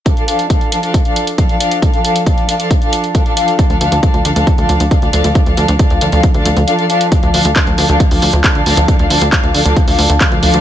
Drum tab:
HH |xxxxxxxxxxxxxxxx|xxxxxxxxxxxxxxxx|xxxxxxxxxxxxxxxx|xxxxxxxxxxxxxxxx|
CP |----------------|----------------|----------------|----------------|
BD |o---o---o---o---|o---o---o---o---|o---o---o---o---|o---o---o-------|

HH |xxoxxxoxxooxxxox|xxoxxxoxxooxxxox|
CP |----x-------x---|----x-------x---|
BD |o---o---o---o---|o---o---o---o---|